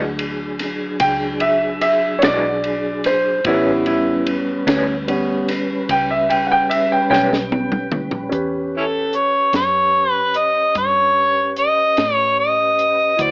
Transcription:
Already playing: D2 F#3 D4 G#4
0.19 ride
0.59 snare, ride
1.00 C#2 G5, kick, ride
1.40 E5, ride
1.81 E5, ride
2.19 C#5, ride
2.23 B1 E3 G#3 D4 F#4 D5, snare
2.64 ride
3.04 C5, snare, ride
3.45 A1 A2 D3 G3 B3 C#4 E4 B4, kick, ride
3.86 G3 C#4 E4 B4, ride
4.27 ride
4.67 D2 A2 G3 B3 C#4, snare, ride
5.07 G3 B3 C#4, ride
5.48 snare, ride
5.89 C#2 G5, kick, ride
6.11 E5
6.30 G5, ride
6.47 F#5
6.52 G5
6.70 E5, ride
6.92 G5
7.10 B1 A2 G3 B3 C#4 G5, snare
7.33 snare
7.52 high tom
7.72 mid tom
7.92 mid tom
8.11 floor tom
8.29 E2 C#4 G4 B4, kick, closed hi-hat
8.33 B4
8.77 C#4 E4 A4
9.13 C#5, closed hi-hat
9.53 F#2 C#5, snare, closed hi-hat
10.11 B4
10.34 D#5, closed hi-hat
10.75 G2 C#5, kick, closed hi-hat
11.56 D#5, closed hi-hat
11.97 A2, snare, closed hi-hat
12.14 C#5
12.39 D#5
12.79 closed hi-hat
13.17 D2 F#3 E4 F#4 C5, kick, closed hi-hat
13.22 D5

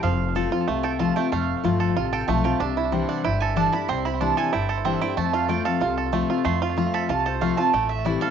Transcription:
0.03 F1 F2 F3 F5
0.35 F3 A3 C4 F4 A4
0.51 C4 F4
0.68 C2 C3 A3
0.83 A4 G5
0.99 F3 A3 C4 F4 A5
1.16 A3 C4 F4 G5
1.32 F1 F2 A3 F5
1.63 G1 F3 A3 C4 F4
1.80 A4
1.96 A1 C3 F4
2.13 A4 G5
2.27 B1 F3 A3 C4 F4 A5
2.44 C4 F4 G5
2.60 C2 C3 D4 E5
2.77 E4
2.92 E3 G3 C4 D4 E4
3.09 D4 F#5
3.24 G1 G2 E4 G5
3.40 A4 G#5
3.56 E3 G3 D4 E4 A5
3.73 D4 E4 B5
3.88 C2 C3 C4 C6
4.05 E4 B5
4.20 E3 G3 D4 E4 A5
4.37 D4 E4 A4 G#5
4.53 G1 G2 E4 G5
4.69 A4 C5
4.85 E3 G3 C4 D4 E4 E5
5.01 D4 E4 G5
5.17 F2 A3 A5
5.33 F4 F5
5.48 F3 A3 C4 F4 G5
5.65 C4 F4 A4 F5
5.80 C2 C3 F4
5.98 A4
6.12 F3 A3 C4 F4
6.29 C4 F4
6.44 F2 A3 C6
6.62 F4
6.77 F3 A3 C4 F4
6.94 A4 B5
7.09 C2 C3 F4 A5
7.26 A4 C5
7.41 F3 A3 C4 F4 F5
7.57 C4 F4 A5
7.73 A1 A2 A3 G5
7.89 E5
8.05 E3 G3 C4 E4 D5
8.21 C4 E4 A4 F5

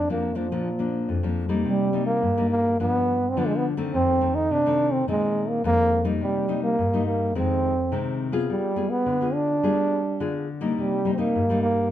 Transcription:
Already playing: F2
0.10 F3 A#3 D4
0.35 F3 A#3 D4
0.51 A#2 F3 A#3 D4
0.79 F3 A#3 D4
1.09 F2
1.23 F3 A#3 D4
1.49 G3 A#3 D#4
1.66 C3 G3
1.93 G3 A#3 D#4
2.06 A#3
2.22 G2
2.37 G3 A#3 D#4
2.50 A#3
2.80 G2 F3 B3 D4
3.29 C4
3.37 D3 F3 B3 D4
3.47 G#3
3.56 B3
3.77 D#3 A3 C4
3.94 F2 C4
4.21 D#3 A3 C4
4.35 D#4
4.51 C3 D4
4.66 D#3 A3 C4
4.93 C4
5.08 A#2 D#3 G#3 C4
5.49 A#3
5.64 F2 D#3 G#3 A#3 C4
6.04 G3 A#3 D#4
6.21 C3 G3
6.48 G3 A#3 D#4
6.64 A#3
6.79 G2
6.93 G3 A#3 D#4
7.07 A#3
7.35 F2 D#3 G#3 C4
7.92 C3 D#3 G#3 C4
8.32 B3 F4 G#4
8.49 G3
8.76 B3 F4 G#4
8.90 B3
9.06 D3
9.21 B3 F4 G#4
9.34 D4
9.63 G3 B3 F4 G#4
10.20 D3 B3 F4 G#4
10.61 G3 A#3 D#4
10.78 C3 G3
11.05 G3 A#3 D#4
11.13 C4
11.18 G3 A#3 D#4
11.35 G2
11.50 G3 A#3 D#4
11.62 A#3

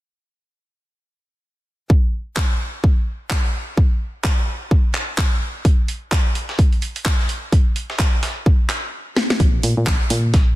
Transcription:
1.90 kick
2.37 kick, clap
2.84 kick
3.30 kick, clap
3.77 kick
4.24 kick, clap
4.71 kick
4.95 clap
5.18 kick, clap
5.65 kick, closed hi-hat
5.88 closed hi-hat
6.12 kick, snare, clap, closed hi-hat
6.35 closed hi-hat
6.49 snare
6.59 kick, closed hi-hat
6.72 closed hi-hat
6.82 closed hi-hat
6.96 closed hi-hat
7.05 kick, snare, clap, closed hi-hat
7.19 snare
7.29 closed hi-hat
7.52 kick, closed hi-hat
7.76 closed hi-hat
7.90 snare
7.99 kick, snare, clap, closed hi-hat
8.23 snare, closed hi-hat
8.46 kick
8.70 snare, clap, closed hi-hat
9.16 snare
9.30 snare
9.40 A#1, kick, closed hi-hat
9.63 A#2, closed hi-hat, open hi-hat
9.77 A#2
9.87 A#1, kick, snare, clap, closed hi-hat
10.10 A#2, closed hi-hat, open hi-hat
10.34 A#1, kick, snare, closed hi-hat

